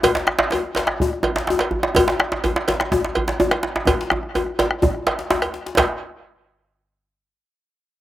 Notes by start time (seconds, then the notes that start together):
0.03 bombo low, cowbell, djembe tone, djembe bass
0.15 djembe slap
0.17 djembe slap
0.27 bombo rim, djembe slap
0.39 djembe slap
0.51 bombo rim, cowbell, djembe slap, djembe tone
0.75 cowbell, djembe slap
0.77 djembe slap
0.87 bombo rim, djembe slap
1.00 bombo low, djembe tone, djembe bass
1.13 bombo rim
1.23 bombo rim, cowbell, djembe tone
1.36 djembe slap
1.38 djembe slap
1.47 djembe slap, djembe tone
1.59 cowbell, djembe slap
1.71 djembe bass
1.83 djembe slap
1.95 bombo low, cowbell, djembe tone
1.98 djembe tone, djembe bass
2.08 djembe slap
2.10 djembe slap
2.20 bombo rim, djembe slap
2.32 djembe slap
2.44 bombo rim, cowbell, djembe tone, djembe bass
2.56 djembe slap
2.68 cowbell, djembe slap, djembe tone
2.80 bombo rim, djembe slap
2.91 bombo low, djembe slap, djembe tone, djembe bass
3.04 djembe slap
3.15 bombo rim, cowbell, djembe bass
3.28 djembe slap
3.40 djembe tone
3.51 bombo rim, cowbell, djembe slap
3.63 bombo rim, djembe slap
3.76 djembe slap
3.86 bombo rim, bombo low, cowbell, djembe slap, djembe tone, djembe bass
3.99 bombo rim, djembe slap
4.10 bombo rim, djembe tone
4.23 bombo rim
4.34 bombo rim, cowbell, djembe tone
4.46 bombo rim
4.59 bombo rim, cowbell, djembe slap, djembe tone
4.71 bombo rim
4.82 bombo low, djembe tone, djembe bass
4.95 bombo rim
5.07 cowbell, djembe slap
5.19 djembe slap
5.30 djembe slap, djembe tone
5.42 bombo rim, cowbell, djembe bass
5.54 djembe slap
5.66 bombo rim, djembe slap
5.77 bombo low, cowbell, djembe slap, djembe bass